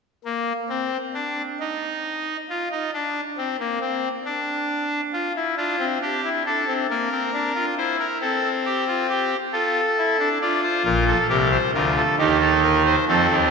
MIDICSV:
0, 0, Header, 1, 2, 480
1, 0, Start_track
1, 0, Key_signature, -2, "major"
1, 0, Tempo, 894188
1, 1335, Time_signature, 3, 2, 24, 8
1, 1812, Tempo, 882353
1, 7322, End_track
2, 0, Start_track
2, 0, Title_t, "Pipe organ"
2, 0, Program_c, 0, 19
2, 132, Note_on_c, 0, 58, 64
2, 282, Note_off_c, 0, 58, 0
2, 373, Note_on_c, 0, 60, 66
2, 523, Note_off_c, 0, 60, 0
2, 614, Note_on_c, 0, 62, 61
2, 763, Note_off_c, 0, 62, 0
2, 858, Note_on_c, 0, 63, 62
2, 1269, Note_off_c, 0, 63, 0
2, 1337, Note_on_c, 0, 65, 71
2, 1439, Note_off_c, 0, 65, 0
2, 1457, Note_on_c, 0, 63, 67
2, 1558, Note_off_c, 0, 63, 0
2, 1575, Note_on_c, 0, 62, 69
2, 1722, Note_off_c, 0, 62, 0
2, 1813, Note_on_c, 0, 60, 66
2, 1915, Note_off_c, 0, 60, 0
2, 1932, Note_on_c, 0, 58, 62
2, 2035, Note_off_c, 0, 58, 0
2, 2050, Note_on_c, 0, 60, 62
2, 2199, Note_off_c, 0, 60, 0
2, 2289, Note_on_c, 0, 62, 70
2, 2701, Note_off_c, 0, 62, 0
2, 2765, Note_on_c, 0, 65, 65
2, 2870, Note_off_c, 0, 65, 0
2, 2890, Note_on_c, 0, 64, 51
2, 2993, Note_off_c, 0, 64, 0
2, 3004, Note_on_c, 0, 62, 58
2, 3006, Note_on_c, 0, 65, 69
2, 3110, Note_off_c, 0, 62, 0
2, 3129, Note_on_c, 0, 60, 61
2, 3156, Note_off_c, 0, 65, 0
2, 3232, Note_off_c, 0, 60, 0
2, 3250, Note_on_c, 0, 62, 57
2, 3250, Note_on_c, 0, 67, 60
2, 3353, Note_off_c, 0, 62, 0
2, 3369, Note_on_c, 0, 64, 54
2, 3398, Note_off_c, 0, 67, 0
2, 3472, Note_off_c, 0, 64, 0
2, 3490, Note_on_c, 0, 62, 52
2, 3490, Note_on_c, 0, 69, 66
2, 3593, Note_off_c, 0, 62, 0
2, 3609, Note_on_c, 0, 60, 50
2, 3638, Note_off_c, 0, 69, 0
2, 3712, Note_off_c, 0, 60, 0
2, 3729, Note_on_c, 0, 58, 62
2, 3730, Note_on_c, 0, 70, 66
2, 3831, Note_off_c, 0, 58, 0
2, 3848, Note_on_c, 0, 60, 56
2, 3950, Note_off_c, 0, 60, 0
2, 3965, Note_on_c, 0, 62, 60
2, 4068, Note_off_c, 0, 62, 0
2, 4082, Note_on_c, 0, 65, 64
2, 4139, Note_off_c, 0, 70, 0
2, 4186, Note_off_c, 0, 65, 0
2, 4204, Note_on_c, 0, 64, 65
2, 4205, Note_on_c, 0, 72, 74
2, 4307, Note_off_c, 0, 72, 0
2, 4324, Note_on_c, 0, 70, 65
2, 4353, Note_off_c, 0, 64, 0
2, 4427, Note_off_c, 0, 70, 0
2, 4442, Note_on_c, 0, 60, 58
2, 4444, Note_on_c, 0, 69, 72
2, 4592, Note_off_c, 0, 69, 0
2, 4685, Note_on_c, 0, 67, 69
2, 4787, Note_off_c, 0, 67, 0
2, 4801, Note_on_c, 0, 65, 69
2, 4905, Note_off_c, 0, 65, 0
2, 4923, Note_on_c, 0, 67, 68
2, 5061, Note_off_c, 0, 60, 0
2, 5071, Note_off_c, 0, 67, 0
2, 5158, Note_on_c, 0, 65, 59
2, 5159, Note_on_c, 0, 69, 65
2, 5307, Note_off_c, 0, 65, 0
2, 5403, Note_on_c, 0, 64, 64
2, 5505, Note_off_c, 0, 64, 0
2, 5520, Note_on_c, 0, 62, 68
2, 5572, Note_off_c, 0, 69, 0
2, 5624, Note_off_c, 0, 62, 0
2, 5640, Note_on_c, 0, 65, 69
2, 5640, Note_on_c, 0, 74, 65
2, 5744, Note_off_c, 0, 74, 0
2, 5759, Note_on_c, 0, 72, 64
2, 5864, Note_off_c, 0, 72, 0
2, 5878, Note_on_c, 0, 70, 64
2, 5879, Note_on_c, 0, 34, 81
2, 5879, Note_on_c, 0, 46, 82
2, 5983, Note_off_c, 0, 70, 0
2, 6001, Note_on_c, 0, 69, 68
2, 6029, Note_off_c, 0, 34, 0
2, 6029, Note_off_c, 0, 46, 0
2, 6054, Note_off_c, 0, 65, 0
2, 6105, Note_off_c, 0, 69, 0
2, 6120, Note_on_c, 0, 36, 74
2, 6120, Note_on_c, 0, 48, 76
2, 6120, Note_on_c, 0, 70, 65
2, 6121, Note_on_c, 0, 67, 65
2, 6225, Note_off_c, 0, 70, 0
2, 6240, Note_on_c, 0, 72, 61
2, 6270, Note_off_c, 0, 36, 0
2, 6271, Note_off_c, 0, 48, 0
2, 6271, Note_off_c, 0, 67, 0
2, 6345, Note_off_c, 0, 72, 0
2, 6362, Note_on_c, 0, 38, 77
2, 6363, Note_on_c, 0, 50, 78
2, 6363, Note_on_c, 0, 65, 55
2, 6363, Note_on_c, 0, 70, 58
2, 6467, Note_off_c, 0, 70, 0
2, 6484, Note_on_c, 0, 69, 58
2, 6512, Note_off_c, 0, 38, 0
2, 6513, Note_off_c, 0, 50, 0
2, 6513, Note_off_c, 0, 65, 0
2, 6588, Note_off_c, 0, 69, 0
2, 6605, Note_on_c, 0, 67, 66
2, 6606, Note_on_c, 0, 63, 65
2, 6607, Note_on_c, 0, 39, 77
2, 6607, Note_on_c, 0, 51, 81
2, 6709, Note_off_c, 0, 67, 0
2, 6728, Note_on_c, 0, 69, 67
2, 6831, Note_off_c, 0, 69, 0
2, 6848, Note_on_c, 0, 70, 66
2, 6952, Note_off_c, 0, 70, 0
2, 6969, Note_on_c, 0, 72, 71
2, 7022, Note_off_c, 0, 39, 0
2, 7022, Note_off_c, 0, 51, 0
2, 7022, Note_off_c, 0, 63, 0
2, 7073, Note_off_c, 0, 72, 0
2, 7092, Note_on_c, 0, 60, 74
2, 7092, Note_on_c, 0, 69, 75
2, 7093, Note_on_c, 0, 41, 95
2, 7093, Note_on_c, 0, 53, 87
2, 7196, Note_off_c, 0, 41, 0
2, 7196, Note_off_c, 0, 53, 0
2, 7212, Note_on_c, 0, 51, 86
2, 7213, Note_on_c, 0, 39, 76
2, 7241, Note_off_c, 0, 69, 0
2, 7315, Note_off_c, 0, 51, 0
2, 7316, Note_off_c, 0, 39, 0
2, 7322, Note_off_c, 0, 60, 0
2, 7322, End_track
0, 0, End_of_file